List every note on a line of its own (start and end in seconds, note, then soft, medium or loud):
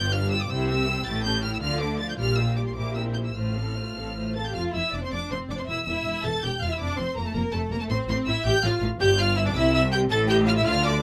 0.00 0.44 G1 loud
0.00 0.44 G2 medium
0.00 0.13 B3 medium
0.00 0.13 F4 medium
0.00 0.12 D5 medium
0.00 0.11 G5 medium
0.00 0.12 G6 loud
0.13 0.32 D4 medium
0.13 0.32 G4 medium
0.13 0.32 B4 medium
0.13 0.32 F5 medium
0.13 0.32 F6 loud
0.31 0.50 B3 medium
0.31 0.51 F4 medium
0.31 0.50 D5 medium
0.31 0.48 G5 medium
0.31 0.40 E6 loud
0.42 0.51 D6 loud
0.49 0.99 C2 medium
0.49 0.99 C3 medium
0.49 0.68 G3 medium
0.49 0.68 E4 medium
0.49 0.67 C5 medium
0.49 0.67 G5 medium
0.49 0.67 E6 loud
0.68 0.88 C4 medium
0.68 0.87 G4 medium
0.68 0.88 G4 medium
0.68 0.87 E5 medium
0.68 1.05 E6 loud
0.86 1.06 G3 medium
0.86 1.05 E4 medium
0.86 1.06 C5 medium
0.86 1.03 G5 medium
1.04 1.55 A1 medium
1.04 1.55 A2 medium
1.04 1.23 A3 medium
1.04 1.23 E4 medium
1.04 1.23 G4 medium
1.04 1.22 G5 medium
1.04 1.25 A6 loud
1.23 1.43 C#4 medium
1.23 1.43 G4 medium
1.23 1.42 A4 medium
1.23 1.42 A5 medium
1.23 1.42 G6 loud
1.42 1.62 A3 medium
1.42 1.62 E4 medium
1.42 1.61 G4 medium
1.42 1.61 G5 medium
1.42 1.52 F6 loud
1.54 1.57 E6 medium
1.61 2.11 D2 medium
1.61 2.11 D3 medium
1.61 1.80 F3 medium
1.61 1.80 F4 medium
1.61 1.78 D5 medium
1.61 1.79 F5 medium
1.61 1.80 F6 loud
1.79 1.99 A3 medium
1.79 1.99 D4 medium
1.79 1.98 A4 medium
1.79 1.98 D5 medium
1.79 1.99 D6 loud
1.99 2.18 F3 medium
1.99 2.18 F4 medium
1.99 2.17 D5 medium
1.99 2.18 F5 medium
1.99 2.08 A6 loud
2.10 2.13 G6 medium
2.18 2.69 A#1 medium
2.18 2.69 A#2 medium
2.18 2.36 G3 medium
2.18 2.36 F4 medium
2.18 2.36 G4 medium
2.18 2.36 D5 medium
2.18 2.37 F6 loud
2.36 2.57 A#3 medium
2.36 2.57 F4 medium
2.36 2.57 G4 medium
2.36 2.57 F5 medium
2.36 2.56 E6 loud
2.57 2.76 G3 medium
2.57 2.76 F4 medium
2.57 2.75 G4 medium
2.57 2.76 D5 medium
2.57 2.61 D6 medium
2.67 2.76 C6 medium
2.76 3.28 A#1 medium
2.76 3.28 A#2 medium
2.76 2.94 A#3 medium
2.76 2.94 E4 medium
2.76 2.94 G4 medium
2.76 2.94 C5 medium
2.76 2.95 D6 medium
2.95 3.15 C4 medium
2.95 3.15 E4 medium
2.95 3.15 G4 medium
2.95 3.15 A#4 medium
2.95 3.03 E6 medium
3.14 3.35 A#3 soft
3.14 3.36 E4 medium
3.14 3.36 G4 soft
3.14 3.34 C5 medium
3.14 3.18 G6 medium
3.25 3.35 E6 medium
3.35 3.88 A1 medium
3.35 3.89 A2 medium
3.35 3.54 A3 medium
3.35 3.54 F4 medium
3.35 3.54 C5 medium
3.35 4.36 F6 medium
3.56 3.76 C4 soft
3.56 3.76 A4 soft
3.56 3.76 F5 soft
3.76 3.96 A3 soft
3.76 3.96 F4 soft
3.76 3.96 C5 soft
3.95 4.48 A1 medium
3.95 4.49 A2 medium
3.95 4.16 C4 soft
3.95 4.16 A4 soft
3.95 4.16 F5 medium
4.16 4.35 A3 medium
4.16 4.35 F4 soft
4.16 4.35 C5 soft
4.35 4.56 C4 medium
4.35 4.40 A4 medium
4.35 4.56 A4 soft
4.35 4.53 F5 soft
4.35 4.45 A5 medium
4.35 4.45 A6 medium
4.46 4.55 G4 medium
4.46 4.55 G5 medium
4.46 4.56 G6 medium
4.54 4.63 F1 medium
4.54 4.63 F2 medium
4.54 4.74 F4 loud
4.54 4.62 F5 medium
4.54 4.62 F6 loud
4.74 4.82 F1 medium
4.74 4.82 F2 medium
4.74 4.94 E4 medium
4.74 4.93 E5 medium
4.74 4.93 E6 medium
4.92 5.01 F1 medium
4.92 5.01 F2 medium
4.92 5.03 D4 medium
4.92 5.02 D5 medium
4.92 5.03 D6 medium
5.02 5.12 C4 medium
5.02 5.12 C5 medium
5.02 5.13 C6 loud
5.11 5.19 F1 medium
5.11 5.20 F2 medium
5.11 5.31 D4 medium
5.11 5.18 D5 medium
5.11 5.31 D6 loud
5.30 5.39 F1 medium
5.30 5.38 F2 medium
5.30 5.50 C4 medium
5.30 5.38 C5 medium
5.30 5.39 C6 loud
5.49 5.57 F1 medium
5.49 5.57 F2 medium
5.49 5.60 D4 medium
5.49 5.59 D5 medium
5.49 5.54 D6 medium
5.58 5.69 C4 medium
5.58 5.68 C5 medium
5.58 5.63 C6 medium
5.67 5.76 E1 medium
5.67 5.75 E2 medium
5.67 5.76 E4 medium
5.67 5.84 E5 medium
5.67 5.85 E6 loud
5.85 5.94 E1 medium
5.85 5.94 E2 medium
5.85 6.24 E4 medium
5.85 6.23 E5 medium
5.85 6.23 E6 loud
6.05 6.13 E1 medium
6.05 6.13 E2 medium
6.23 6.31 E1 medium
6.23 6.32 E2 medium
6.23 6.43 A4 loud
6.23 6.43 A5 loud
6.23 6.43 A6 loud
6.42 6.51 E1 medium
6.42 6.51 E2 medium
6.42 6.51 G4 medium
6.42 6.62 G5 medium
6.42 6.61 G6 loud
6.61 6.69 E1 medium
6.61 6.69 E2 medium
6.61 6.71 F4 medium
6.61 6.70 F5 loud
6.61 6.71 F6 loud
6.69 6.80 E4 medium
6.69 6.79 E5 medium
6.69 6.81 E6 medium
6.79 6.87 F1 medium
6.79 6.88 F2 medium
6.79 6.98 D4 loud
6.79 6.98 D5 medium
6.79 6.98 D6 loud
6.98 7.05 F1 medium
6.98 7.06 F2 medium
6.98 7.17 C4 medium
6.98 7.16 C5 medium
6.98 7.16 C6 loud
7.16 7.24 F1 medium
7.16 7.24 F2 medium
7.16 7.21 A#3 medium
7.16 7.26 A#4 medium
7.16 7.25 A#5 loud
7.25 7.35 A3 medium
7.25 7.35 A4 medium
7.25 7.35 A5 loud
7.34 7.42 F1 medium
7.34 7.42 F2 medium
7.34 7.42 A#3 medium
7.34 7.53 A#4 loud
7.34 7.41 A#5 loud
7.52 7.60 F1 medium
7.52 7.61 F2 medium
7.52 7.71 A3 medium
7.52 7.72 A4 medium
7.52 7.60 A5 loud
7.71 7.79 F1 medium
7.71 7.79 F2 medium
7.71 7.75 A#3 medium
7.71 7.81 A#4 loud
7.71 7.81 A#5 loud
7.80 7.90 A3 medium
7.80 7.85 A4 medium
7.80 7.84 A5 loud
7.89 7.97 A1 loud
7.89 7.98 A2 medium
7.89 8.07 C4 loud
7.89 8.07 C5 medium
7.89 7.97 C6 loud
8.07 8.15 A1 medium
8.07 8.16 A2 medium
8.07 8.27 C4 loud
8.07 8.16 C5 medium
8.07 8.17 C6 loud
8.26 8.34 A1 medium
8.26 8.34 A2 medium
8.26 8.46 E4 loud
8.26 8.45 E5 loud
8.26 8.45 E6 loud
8.44 8.52 A1 loud
8.44 8.52 A2 loud
8.44 8.52 G4 loud
8.44 8.64 G5 loud
8.44 8.64 G6 loud
8.63 8.70 A1 medium
8.63 8.71 A2 medium
8.63 8.81 F4 loud
8.63 8.82 F5 medium
8.63 8.82 F6 loud
8.81 8.88 A1 loud
8.81 8.89 A2 medium
9.00 9.51 G1 loud
9.00 9.51 G2 medium
9.00 9.17 G4 loud
9.00 9.07 G5 loud
9.00 9.18 G6 loud
9.18 9.37 F4 loud
9.18 9.26 F5 loud
9.18 9.37 F6 loud
9.36 9.46 E4 loud
9.36 9.40 E5 loud
9.36 9.46 E6 loud
9.45 9.55 D4 loud
9.45 9.49 D5 medium
9.45 9.56 D6 loud
9.54 10.10 C2 loud
9.54 10.11 C3 loud
9.54 9.73 E4 loud
9.54 9.71 E5 loud
9.54 9.73 E6 loud
9.72 9.82 E4 loud
9.72 9.91 E5 loud
9.72 9.82 E6 loud
9.91 10.00 G4 loud
9.91 9.99 G5 loud
9.91 10.00 G6 loud
10.10 10.65 A1 loud
10.10 10.66 A2 loud
10.10 10.29 A4 loud
10.10 10.17 A5 loud
10.10 10.19 A6 loud
10.28 10.48 G4 loud
10.28 10.35 G5 loud
10.28 10.37 G6 loud
10.46 10.58 F4 loud
10.46 10.51 F5 loud
10.46 10.52 F6 loud
10.56 10.67 E4 loud
10.56 10.66 E5 loud
10.56 10.67 E6 loud
10.66 11.02 D2 loud
10.66 11.02 D3 loud
10.66 10.86 F4 loud
10.66 10.74 F5 loud
10.66 10.85 F6 loud
10.84 11.02 D4 loud
10.84 11.02 D5 loud
10.84 11.02 D6 loud